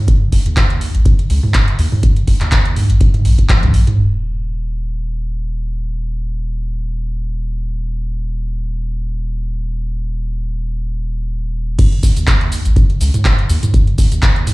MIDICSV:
0, 0, Header, 1, 3, 480
1, 0, Start_track
1, 0, Tempo, 487805
1, 79, Time_signature, 4, 2, 24, 8
1, 14304, End_track
2, 0, Start_track
2, 0, Title_t, "Sub bass"
2, 0, Program_c, 0, 38
2, 318, Note_on_c, 0, 27, 99
2, 412, Note_off_c, 0, 27, 0
2, 450, Note_on_c, 0, 39, 86
2, 869, Note_off_c, 0, 39, 0
2, 931, Note_on_c, 0, 32, 84
2, 1008, Note_off_c, 0, 32, 0
2, 1278, Note_on_c, 0, 37, 77
2, 1372, Note_off_c, 0, 37, 0
2, 1758, Note_on_c, 0, 39, 106
2, 1852, Note_off_c, 0, 39, 0
2, 2238, Note_on_c, 0, 27, 103
2, 2332, Note_off_c, 0, 27, 0
2, 2370, Note_on_c, 0, 39, 86
2, 2789, Note_off_c, 0, 39, 0
2, 2850, Note_on_c, 0, 32, 84
2, 2927, Note_off_c, 0, 32, 0
2, 3199, Note_on_c, 0, 34, 97
2, 3292, Note_off_c, 0, 34, 0
2, 3570, Note_on_c, 0, 37, 97
2, 3647, Note_off_c, 0, 37, 0
2, 3679, Note_on_c, 0, 34, 86
2, 3772, Note_off_c, 0, 34, 0
2, 3919, Note_on_c, 0, 27, 84
2, 11577, Note_off_c, 0, 27, 0
2, 11838, Note_on_c, 0, 27, 96
2, 11932, Note_off_c, 0, 27, 0
2, 11971, Note_on_c, 0, 39, 88
2, 12389, Note_off_c, 0, 39, 0
2, 12450, Note_on_c, 0, 32, 84
2, 12527, Note_off_c, 0, 32, 0
2, 12799, Note_on_c, 0, 37, 82
2, 12892, Note_off_c, 0, 37, 0
2, 13279, Note_on_c, 0, 39, 108
2, 13372, Note_off_c, 0, 39, 0
2, 13758, Note_on_c, 0, 27, 102
2, 13852, Note_off_c, 0, 27, 0
2, 13890, Note_on_c, 0, 39, 86
2, 14304, Note_off_c, 0, 39, 0
2, 14304, End_track
3, 0, Start_track
3, 0, Title_t, "Drums"
3, 77, Note_on_c, 9, 36, 116
3, 79, Note_on_c, 9, 42, 85
3, 176, Note_off_c, 9, 36, 0
3, 177, Note_off_c, 9, 42, 0
3, 318, Note_on_c, 9, 36, 79
3, 319, Note_on_c, 9, 46, 109
3, 416, Note_off_c, 9, 36, 0
3, 417, Note_off_c, 9, 46, 0
3, 451, Note_on_c, 9, 42, 54
3, 549, Note_off_c, 9, 42, 0
3, 557, Note_on_c, 9, 39, 127
3, 558, Note_on_c, 9, 36, 113
3, 559, Note_on_c, 9, 42, 82
3, 655, Note_off_c, 9, 39, 0
3, 656, Note_off_c, 9, 36, 0
3, 658, Note_off_c, 9, 42, 0
3, 691, Note_on_c, 9, 42, 38
3, 789, Note_off_c, 9, 42, 0
3, 798, Note_on_c, 9, 46, 99
3, 897, Note_off_c, 9, 46, 0
3, 931, Note_on_c, 9, 42, 52
3, 1029, Note_off_c, 9, 42, 0
3, 1038, Note_on_c, 9, 36, 114
3, 1038, Note_on_c, 9, 42, 75
3, 1136, Note_off_c, 9, 36, 0
3, 1136, Note_off_c, 9, 42, 0
3, 1170, Note_on_c, 9, 42, 38
3, 1269, Note_off_c, 9, 42, 0
3, 1279, Note_on_c, 9, 46, 91
3, 1377, Note_off_c, 9, 46, 0
3, 1410, Note_on_c, 9, 45, 97
3, 1509, Note_off_c, 9, 45, 0
3, 1516, Note_on_c, 9, 39, 120
3, 1518, Note_on_c, 9, 36, 115
3, 1518, Note_on_c, 9, 42, 83
3, 1614, Note_off_c, 9, 39, 0
3, 1616, Note_off_c, 9, 36, 0
3, 1617, Note_off_c, 9, 42, 0
3, 1651, Note_on_c, 9, 42, 39
3, 1749, Note_off_c, 9, 42, 0
3, 1759, Note_on_c, 9, 46, 92
3, 1857, Note_off_c, 9, 46, 0
3, 1890, Note_on_c, 9, 45, 95
3, 1989, Note_off_c, 9, 45, 0
3, 1998, Note_on_c, 9, 36, 111
3, 1999, Note_on_c, 9, 42, 89
3, 2097, Note_off_c, 9, 36, 0
3, 2097, Note_off_c, 9, 42, 0
3, 2130, Note_on_c, 9, 42, 38
3, 2228, Note_off_c, 9, 42, 0
3, 2238, Note_on_c, 9, 36, 80
3, 2239, Note_on_c, 9, 46, 99
3, 2337, Note_off_c, 9, 36, 0
3, 2337, Note_off_c, 9, 46, 0
3, 2368, Note_on_c, 9, 39, 37
3, 2370, Note_on_c, 9, 42, 55
3, 2466, Note_off_c, 9, 39, 0
3, 2469, Note_off_c, 9, 42, 0
3, 2476, Note_on_c, 9, 39, 127
3, 2478, Note_on_c, 9, 36, 110
3, 2479, Note_on_c, 9, 42, 86
3, 2575, Note_off_c, 9, 39, 0
3, 2577, Note_off_c, 9, 36, 0
3, 2577, Note_off_c, 9, 42, 0
3, 2612, Note_on_c, 9, 42, 39
3, 2710, Note_off_c, 9, 42, 0
3, 2720, Note_on_c, 9, 45, 80
3, 2720, Note_on_c, 9, 46, 101
3, 2818, Note_off_c, 9, 45, 0
3, 2818, Note_off_c, 9, 46, 0
3, 2851, Note_on_c, 9, 42, 55
3, 2949, Note_off_c, 9, 42, 0
3, 2958, Note_on_c, 9, 36, 118
3, 2958, Note_on_c, 9, 42, 77
3, 3056, Note_off_c, 9, 42, 0
3, 3057, Note_off_c, 9, 36, 0
3, 3090, Note_on_c, 9, 42, 37
3, 3090, Note_on_c, 9, 45, 77
3, 3189, Note_off_c, 9, 42, 0
3, 3189, Note_off_c, 9, 45, 0
3, 3198, Note_on_c, 9, 46, 92
3, 3297, Note_off_c, 9, 46, 0
3, 3330, Note_on_c, 9, 36, 63
3, 3331, Note_on_c, 9, 42, 40
3, 3429, Note_off_c, 9, 36, 0
3, 3429, Note_off_c, 9, 42, 0
3, 3437, Note_on_c, 9, 39, 119
3, 3438, Note_on_c, 9, 36, 121
3, 3439, Note_on_c, 9, 42, 85
3, 3439, Note_on_c, 9, 48, 60
3, 3535, Note_off_c, 9, 39, 0
3, 3537, Note_off_c, 9, 36, 0
3, 3537, Note_off_c, 9, 42, 0
3, 3537, Note_off_c, 9, 48, 0
3, 3572, Note_on_c, 9, 42, 37
3, 3572, Note_on_c, 9, 45, 78
3, 3572, Note_on_c, 9, 48, 60
3, 3670, Note_off_c, 9, 42, 0
3, 3670, Note_off_c, 9, 45, 0
3, 3670, Note_off_c, 9, 48, 0
3, 3679, Note_on_c, 9, 46, 100
3, 3777, Note_off_c, 9, 46, 0
3, 3811, Note_on_c, 9, 42, 41
3, 3811, Note_on_c, 9, 45, 99
3, 3909, Note_off_c, 9, 42, 0
3, 3909, Note_off_c, 9, 45, 0
3, 3919, Note_on_c, 9, 49, 90
3, 4017, Note_off_c, 9, 49, 0
3, 11598, Note_on_c, 9, 36, 125
3, 11598, Note_on_c, 9, 42, 58
3, 11598, Note_on_c, 9, 57, 110
3, 11599, Note_on_c, 9, 82, 35
3, 11697, Note_off_c, 9, 36, 0
3, 11697, Note_off_c, 9, 42, 0
3, 11697, Note_off_c, 9, 57, 0
3, 11698, Note_off_c, 9, 82, 0
3, 11731, Note_on_c, 9, 42, 28
3, 11829, Note_off_c, 9, 42, 0
3, 11838, Note_on_c, 9, 36, 85
3, 11839, Note_on_c, 9, 46, 115
3, 11840, Note_on_c, 9, 82, 84
3, 11936, Note_off_c, 9, 36, 0
3, 11937, Note_off_c, 9, 46, 0
3, 11938, Note_off_c, 9, 82, 0
3, 11970, Note_on_c, 9, 42, 54
3, 11971, Note_on_c, 9, 82, 46
3, 12069, Note_off_c, 9, 42, 0
3, 12070, Note_off_c, 9, 82, 0
3, 12077, Note_on_c, 9, 39, 127
3, 12078, Note_on_c, 9, 36, 122
3, 12079, Note_on_c, 9, 42, 60
3, 12080, Note_on_c, 9, 82, 35
3, 12175, Note_off_c, 9, 39, 0
3, 12176, Note_off_c, 9, 36, 0
3, 12177, Note_off_c, 9, 42, 0
3, 12178, Note_off_c, 9, 82, 0
3, 12211, Note_on_c, 9, 42, 28
3, 12310, Note_off_c, 9, 42, 0
3, 12319, Note_on_c, 9, 46, 105
3, 12320, Note_on_c, 9, 82, 78
3, 12417, Note_off_c, 9, 46, 0
3, 12418, Note_off_c, 9, 82, 0
3, 12451, Note_on_c, 9, 42, 54
3, 12452, Note_on_c, 9, 82, 44
3, 12550, Note_off_c, 9, 42, 0
3, 12551, Note_off_c, 9, 82, 0
3, 12558, Note_on_c, 9, 36, 124
3, 12559, Note_on_c, 9, 42, 54
3, 12560, Note_on_c, 9, 82, 33
3, 12657, Note_off_c, 9, 36, 0
3, 12658, Note_off_c, 9, 42, 0
3, 12659, Note_off_c, 9, 82, 0
3, 12691, Note_on_c, 9, 42, 26
3, 12790, Note_off_c, 9, 42, 0
3, 12799, Note_on_c, 9, 46, 101
3, 12800, Note_on_c, 9, 82, 79
3, 12898, Note_off_c, 9, 46, 0
3, 12899, Note_off_c, 9, 82, 0
3, 12931, Note_on_c, 9, 42, 57
3, 12931, Note_on_c, 9, 45, 90
3, 12932, Note_on_c, 9, 82, 47
3, 13029, Note_off_c, 9, 42, 0
3, 13029, Note_off_c, 9, 45, 0
3, 13030, Note_off_c, 9, 82, 0
3, 13037, Note_on_c, 9, 39, 121
3, 13038, Note_on_c, 9, 36, 116
3, 13039, Note_on_c, 9, 42, 52
3, 13040, Note_on_c, 9, 82, 33
3, 13135, Note_off_c, 9, 39, 0
3, 13137, Note_off_c, 9, 36, 0
3, 13137, Note_off_c, 9, 42, 0
3, 13138, Note_off_c, 9, 82, 0
3, 13172, Note_on_c, 9, 42, 29
3, 13270, Note_off_c, 9, 42, 0
3, 13279, Note_on_c, 9, 46, 104
3, 13280, Note_on_c, 9, 82, 77
3, 13377, Note_off_c, 9, 46, 0
3, 13378, Note_off_c, 9, 82, 0
3, 13411, Note_on_c, 9, 42, 58
3, 13411, Note_on_c, 9, 45, 99
3, 13412, Note_on_c, 9, 82, 46
3, 13509, Note_off_c, 9, 42, 0
3, 13509, Note_off_c, 9, 45, 0
3, 13510, Note_off_c, 9, 82, 0
3, 13518, Note_on_c, 9, 36, 122
3, 13519, Note_on_c, 9, 42, 53
3, 13520, Note_on_c, 9, 82, 32
3, 13616, Note_off_c, 9, 36, 0
3, 13617, Note_off_c, 9, 42, 0
3, 13618, Note_off_c, 9, 82, 0
3, 13652, Note_on_c, 9, 42, 27
3, 13750, Note_off_c, 9, 42, 0
3, 13758, Note_on_c, 9, 36, 85
3, 13759, Note_on_c, 9, 46, 111
3, 13760, Note_on_c, 9, 82, 78
3, 13857, Note_off_c, 9, 36, 0
3, 13857, Note_off_c, 9, 46, 0
3, 13858, Note_off_c, 9, 82, 0
3, 13891, Note_on_c, 9, 42, 56
3, 13892, Note_on_c, 9, 82, 43
3, 13989, Note_off_c, 9, 42, 0
3, 13990, Note_off_c, 9, 82, 0
3, 13997, Note_on_c, 9, 39, 127
3, 13998, Note_on_c, 9, 36, 127
3, 13999, Note_on_c, 9, 42, 58
3, 14000, Note_on_c, 9, 82, 34
3, 14095, Note_off_c, 9, 39, 0
3, 14097, Note_off_c, 9, 36, 0
3, 14097, Note_off_c, 9, 42, 0
3, 14098, Note_off_c, 9, 82, 0
3, 14131, Note_on_c, 9, 42, 28
3, 14230, Note_off_c, 9, 42, 0
3, 14239, Note_on_c, 9, 45, 87
3, 14239, Note_on_c, 9, 46, 113
3, 14240, Note_on_c, 9, 82, 78
3, 14304, Note_off_c, 9, 45, 0
3, 14304, Note_off_c, 9, 46, 0
3, 14304, Note_off_c, 9, 82, 0
3, 14304, End_track
0, 0, End_of_file